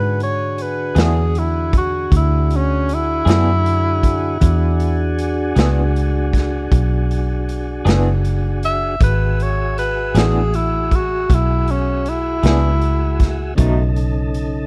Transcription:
0.00 0.93 G#2 medium
0.00 4.38 D3 medium
0.00 4.38 F#4 medium
0.00 4.38 G#4 medium
0.00 0.20 B4 medium
0.20 0.63 C#5 medium
0.20 closed hi-hat soft
0.58 1.02 B4 medium
0.58 closed hi-hat medium
0.95 2.08 E2 medium
0.95 1.20 E3 soft
0.95 1.19 B3 medium
0.95 1.19 D4 medium
0.95 1.19 G#4 medium
0.95 snare medium
0.95 closed hi-hat medium
1.01 1.40 G#4 medium
1.35 1.74 E4 medium
1.35 closed hi-hat medium
1.73 kick medium
1.73 closed hi-hat medium
1.77 2.12 F#4 medium
2.12 3.23 D2 medium
2.12 kick loud
2.12 closed hi-hat medium
2.16 2.58 E4 medium
2.50 closed hi-hat medium
2.56 2.96 C#4 medium
2.89 closed hi-hat medium
2.94 5.17 E4 medium
3.25 4.38 F#2 medium
3.25 3.50 E3 medium
3.25 3.50 B3 medium
3.25 3.49 D4 medium
3.25 3.49 G#4 medium
3.25 closed hi-hat medium
3.30 snare medium
3.66 closed hi-hat medium
4.03 kick medium
4.03 closed hi-hat medium
4.40 5.53 E2 medium
4.40 8.96 D4 medium
4.40 8.95 F#4 medium
4.40 8.96 G#4 medium
4.40 kick loud
4.40 closed hi-hat medium
4.80 closed hi-hat medium
5.18 closed hi-hat medium
5.55 6.67 C#2 medium
5.55 5.80 E3 medium
5.55 5.79 B3 medium
5.55 5.79 D4 medium
5.55 5.79 G#4 medium
5.55 snare medium
5.55 closed hi-hat medium
5.96 closed hi-hat medium
6.33 kick medium
6.33 snare soft
6.33 closed hi-hat medium
6.71 7.82 B1 medium
6.71 kick loud
6.71 closed hi-hat medium
7.11 closed hi-hat medium
7.49 closed hi-hat medium
7.85 8.97 F#1 medium
7.85 8.09 E3 medium
7.85 8.09 B3 medium
7.85 8.08 D4 medium
7.85 8.08 G#4 medium
7.85 snare loud
7.85 closed hi-hat medium
8.25 closed hi-hat soft
8.63 9.00 E5 medium
8.63 closed hi-hat medium
9.00 10.11 G#1 medium
9.00 13.54 F#4 medium
9.00 13.54 G#4 medium
9.00 9.44 B4 medium
9.00 13.54 E5 medium
9.00 kick loud
9.00 closed hi-hat medium
9.40 9.77 C#5 medium
9.40 closed hi-hat soft
9.78 10.19 B4 medium
9.78 closed hi-hat medium
10.15 11.26 A1 medium
10.15 10.39 E3 medium
10.15 10.39 B3 medium
10.15 10.38 D4 medium
10.15 10.37 G#4 medium
10.15 10.57 G#4 medium
10.15 snare loud
10.15 closed hi-hat medium
10.54 10.97 E4 medium
10.54 closed hi-hat medium
10.91 11.35 F#4 medium
10.91 kick medium
10.91 closed hi-hat medium
11.30 12.40 B1 medium
11.30 kick medium
11.30 closed hi-hat medium
11.34 11.73 E4 medium
11.68 12.11 C#4 medium
11.68 closed hi-hat medium
12.06 13.56 E4 medium
12.06 closed hi-hat medium
12.43 13.55 C#2 medium
12.43 12.67 E3 soft
12.43 12.67 B3 medium
12.43 12.67 D4 medium
12.43 12.66 G#4 medium
12.43 snare medium
12.43 closed hi-hat medium
12.81 closed hi-hat medium
13.20 kick medium
13.20 snare soft
13.20 closed hi-hat medium
13.55 14.67 B1 medium
13.55 13.81 B2 medium
13.55 14.67 C#3 medium
13.55 13.81 F#3 medium
13.55 13.81 A3 medium
13.55 14.67 D#4 medium
13.55 14.67 A4 medium
13.55 kick loud
13.55 closed hi-hat medium
13.59 13.82 D#4 medium
13.96 closed hi-hat soft
14.34 closed hi-hat soft

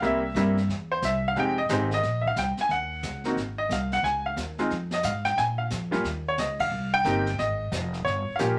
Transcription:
0.02 0.34 C2 medium
0.02 0.21 G3 medium
0.02 0.21 A#3 medium
0.02 0.21 C4 medium
0.02 0.21 E4 medium
0.02 brush sweep soft
0.02 snare soft
0.06 0.67 E5 medium
0.35 0.67 G2 medium
0.35 0.55 G3 medium
0.35 0.55 A#3 medium
0.35 0.55 C4 medium
0.35 0.55 E4 medium
0.35 snare medium
0.35 hi-hat pedal medium
0.57 snare soft
0.68 1.01 E2 medium
0.68 brush sweep soft
0.68 snare soft
0.92 1.03 C5 medium
1.02 1.35 C2 medium
1.02 1.23 E5 medium
1.02 snare medium
1.02 hi-hat pedal medium
1.28 1.38 F5 loud
1.36 1.68 F1 medium
1.36 1.55 G#3 medium
1.36 1.55 C4 medium
1.36 1.56 D#4 medium
1.36 1.56 G4 medium
1.36 1.58 G5 medium
1.36 brush sweep soft
1.36 snare soft
1.58 1.63 D#5 medium
1.69 2.02 G#1 loud
1.69 1.89 G#3 medium
1.69 1.89 C4 medium
1.69 1.89 D#4 medium
1.69 1.89 G4 medium
1.69 snare medium
1.69 hi-hat pedal medium
1.73 1.91 C5 medium
1.91 2.21 D#5 loud
1.91 snare medium
2.02 2.35 A#1 medium
2.02 brush sweep soft
2.02 snare soft
2.21 2.25 E5 medium
2.21 kick medium
2.27 2.38 F5 loud
2.36 2.56 C2 medium
2.36 2.44 G5 medium
2.36 snare medium
2.36 hi-hat pedal medium
2.57 2.72 G#5 loud
2.57 muted upright bass stroke soft
2.57 snare soft
2.69 3.02 D#2 medium
2.69 3.33 F#5 medium
2.69 brush sweep soft
2.69 snare soft
3.03 3.36 C#2 medium
3.03 snare medium
3.03 hi-hat pedal medium
3.24 3.36 A#3 medium
3.24 3.36 C4 medium
3.24 3.36 D#4 medium
3.24 3.37 F#4 medium
3.24 snare soft
3.36 3.69 G#1 medium
3.36 brush sweep soft
3.36 snare soft
3.58 3.71 D#5 medium
3.69 4.02 C2 medium
3.69 3.93 F5 medium
3.69 snare medium
3.69 hi-hat pedal soft
3.92 4.05 F#5 medium
3.92 snare soft
4.03 4.36 C#2 medium
4.03 4.26 G#5 medium
4.03 brush sweep soft
4.03 snare soft
4.26 4.37 F5 medium
4.36 4.69 D#2 medium
4.36 snare medium
4.36 hi-hat pedal medium
4.58 4.70 G#3 medium
4.58 4.70 C4 medium
4.58 4.70 D#4 medium
4.58 4.70 F4 medium
4.58 snare soft
4.70 5.03 F2 medium
4.70 brush sweep soft
4.70 snare soft
4.91 5.05 D#5 medium
4.91 snare medium
5.03 5.36 G#2 medium
5.03 5.24 F5 medium
5.03 snare medium
5.03 hi-hat pedal medium
5.25 5.38 G5 loud
5.25 snare soft
5.37 5.70 A#2 medium
5.37 5.43 G#5 loud
5.37 brush sweep soft
5.37 snare soft
5.58 5.63 F5 medium
5.70 6.03 F2 medium
5.70 snare medium
5.70 hi-hat pedal medium
5.91 6.03 G3 medium
5.91 6.03 A#3 medium
5.91 6.03 C#4 medium
5.91 6.03 F4 medium
5.91 snare soft
6.04 6.37 D#2 medium
6.04 brush sweep soft
6.04 snare soft
6.28 6.39 C#5 medium
6.38 6.70 C#2 medium
6.38 6.60 D#5 medium
6.38 snare medium
6.38 hi-hat pedal medium
6.60 6.94 F5 loud
6.60 kick medium
6.60 crash medium
6.71 7.04 C2 medium
6.71 brush sweep soft
6.94 7.36 G5 loud
7.04 7.37 G1 loud
7.04 7.24 A#3 medium
7.04 7.24 C4 medium
7.04 7.24 D#4 medium
7.04 7.25 G4 medium
7.04 snare medium
7.04 hi-hat pedal medium
7.26 snare soft
7.38 7.71 G#1 medium
7.38 8.08 D#5 medium
7.38 brush sweep soft
7.38 snare soft
7.72 8.04 F1 loud
7.72 snare medium
7.72 hi-hat pedal medium
7.93 snare soft
8.05 8.25 G1 medium
8.05 8.40 C#5 medium
8.05 brush sweep soft
8.05 snare soft
8.29 muted upright bass stroke soft
8.36 8.58 A#3 medium
8.36 8.58 C#4 medium
8.36 8.41 F5 medium
8.36 snare medium
8.36 hi-hat pedal medium
8.40 8.59 A#1 medium
8.40 8.59 F4 medium
8.40 8.59 G4 medium

